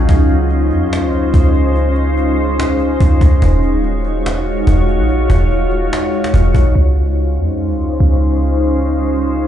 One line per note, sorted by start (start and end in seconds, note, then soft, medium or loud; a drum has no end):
0.00 3.38 C#4 medium
0.00 6.72 D#4 medium
0.00 3.38 F4 medium
0.09 0.73 C#2 loud
0.09 6.72 G#3 medium
0.09 3.39 C5 medium
0.09 cajon bass loud
0.29 cajon slap soft
0.51 cajon slap soft
0.71 1.04 F2 loud
0.71 cajon slap soft
0.93 cajon slap loud
1.03 1.32 C#2 loud
1.13 cajon slap soft
1.34 2.96 C#2 loud
1.34 cajon bass medium
1.55 cajon slap soft
1.76 cajon slap soft
1.96 cajon slap soft
2.17 cajon slap soft
2.60 cajon slap loud
2.80 cajon slap soft
3.00 3.21 C#2 loud
3.00 cajon bass medium
3.21 3.41 C#2 loud
3.21 cajon bass loud
3.42 4.63 D#1 loud
3.42 6.72 F4 medium
3.42 6.72 F#4 medium
3.42 6.72 C#5 medium
3.42 cajon bass loud
3.63 cajon slap soft
3.84 cajon slap soft
4.04 cajon slap soft
4.26 cajon slap loud
4.46 cajon slap soft
4.67 5.00 D#1 loud
4.67 cajon bass medium
4.88 cajon slap soft
4.98 5.28 A#1 loud
5.09 cajon slap soft
5.30 5.90 D#1 loud
5.30 cajon bass loud
5.51 cajon slap soft
5.71 cajon slap soft
5.93 cajon slap loud
6.13 cajon slap soft
6.24 cajon slap loud
6.34 6.54 D#1 loud
6.34 cajon bass medium
6.55 6.75 A#1 loud
6.55 cajon bass medium
6.75 7.39 C#2 loud
6.75 9.47 G#3 medium
6.75 9.47 C#4 medium
6.75 9.47 D#4 medium
6.75 9.47 F4 medium
6.75 9.47 C5 medium
7.38 7.71 F2 loud
7.69 7.99 C#2 loud
8.00 9.47 C#2 loud